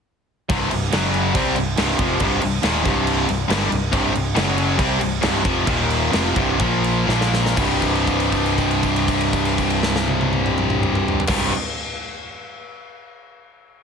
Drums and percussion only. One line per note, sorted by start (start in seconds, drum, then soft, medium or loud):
0.50 kick loud
0.50 crash medium
0.71 crash medium
0.92 snare loud
0.92 crash medium
1.14 crash medium
1.35 kick loud
1.35 crash medium
1.56 crash medium
1.77 snare loud
1.77 crash medium
1.99 kick loud
1.99 crash medium
2.20 kick loud
2.20 crash medium
2.41 crash medium
2.63 snare loud
2.63 crash medium
2.85 kick medium
2.85 crash medium
3.07 crash medium
3.29 crash medium
3.50 snare loud
3.50 crash medium
3.72 crash medium
3.93 kick loud
3.93 crash medium
4.15 crash medium
4.36 snare loud
4.36 crash medium
4.58 crash medium
4.79 kick loud
4.79 crash medium
5.01 crash medium
5.23 snare loud
5.23 crash medium
5.45 kick loud
5.45 crash medium
5.67 kick loud
5.67 crash medium
5.90 crash medium
6.13 snare loud
6.13 crash medium
6.36 kick medium
6.36 crash medium
6.60 kick loud
6.60 crash medium
6.84 crash medium
7.09 snare medium
7.21 snare medium
7.34 snare medium
7.46 snare medium
7.57 kick loud
7.57 crash medium
7.82 kick medium
7.82 crash medium
7.95 crash soft
8.07 kick medium
8.07 crash soft
8.20 crash soft
8.32 kick medium
8.32 crash soft
8.46 crash soft
8.58 kick medium
8.58 crash soft
8.71 crash soft
8.83 kick medium
8.83 crash soft
8.96 crash medium
9.08 kick medium
9.08 crash soft
9.21 crash medium
9.33 kick medium
9.33 crash medium
9.45 crash soft
9.58 kick medium
9.58 crash soft
9.70 crash soft
9.83 snare medium
9.96 snare medium
10.08 high tom medium
10.21 high tom medium
10.33 high tom medium
10.46 mid tom loud
10.58 mid tom medium
10.70 mid tom medium
10.83 mid tom loud
10.95 mid tom loud
11.08 floor tom loud
11.20 floor tom loud
11.27 kick loud
11.27 snare loud
11.27 crash loud